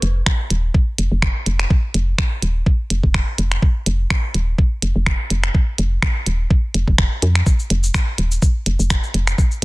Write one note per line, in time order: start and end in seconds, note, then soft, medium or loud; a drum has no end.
0.02 0.22 F1 medium
0.02 closed hi-hat medium
0.26 finger snap medium
0.26 kick loud
0.50 0.70 D#1 medium
0.50 closed hi-hat medium
0.74 kick loud
0.98 1.09 F1 medium
0.98 closed hi-hat medium
1.12 1.31 F1 medium
1.22 finger snap medium
1.22 kick loud
1.46 1.66 F1 medium
1.46 closed hi-hat medium
1.59 finger snap medium
1.59 closed hi-hat soft
1.70 kick loud
1.94 2.14 F1 medium
1.94 closed hi-hat medium
2.18 finger snap loud
2.18 kick loud
2.42 2.62 D#1 medium
2.42 closed hi-hat medium
2.66 kick loud
2.90 3.01 F1 medium
2.90 closed hi-hat medium
3.03 3.23 F1 medium
3.03 kick medium
3.14 finger snap medium
3.14 kick loud
3.38 3.58 F1 medium
3.38 closed hi-hat medium
3.52 finger snap medium
3.52 closed hi-hat soft
3.62 kick loud
3.86 4.06 F1 loud
3.86 closed hi-hat medium
4.10 finger snap loud
4.10 kick loud
4.34 4.54 D#1 medium
4.34 closed hi-hat medium
4.58 kick loud
4.82 4.93 F1 medium
4.82 closed hi-hat loud
4.96 5.15 F1 medium
5.06 finger snap medium
5.06 kick loud
5.30 5.50 F1 medium
5.30 closed hi-hat loud
5.44 finger snap medium
5.44 closed hi-hat soft
5.54 kick loud
5.78 5.98 F1 loud
5.78 closed hi-hat medium
6.02 finger snap medium
6.02 kick loud
6.26 6.46 D#1 medium
6.26 closed hi-hat medium
6.50 kick loud
6.74 6.85 F1 medium
6.74 closed hi-hat medium
6.88 7.07 F1 loud
6.88 kick medium
6.98 finger snap medium
6.98 kick loud
7.22 7.42 F2 medium
7.22 closed hi-hat medium
7.35 finger snap medium
7.35 closed hi-hat soft
7.46 kick loud
7.46 shaker soft
7.59 shaker soft
7.70 7.90 F1 loud
7.70 closed hi-hat medium
7.83 shaker soft
7.94 finger snap medium
7.94 kick loud
7.94 shaker medium
8.18 8.38 D#1 medium
8.18 closed hi-hat medium
8.31 shaker soft
8.42 kick loud
8.42 shaker soft
8.66 8.77 F1 medium
8.66 closed hi-hat medium
8.79 8.99 F1 medium
8.79 shaker soft
8.90 finger snap medium
8.90 kick loud
8.90 shaker medium
9.03 shaker soft
9.14 9.34 F1 medium
9.14 closed hi-hat medium
9.27 finger snap medium
9.27 closed hi-hat soft
9.27 shaker soft
9.38 kick loud
9.38 shaker medium
9.51 shaker soft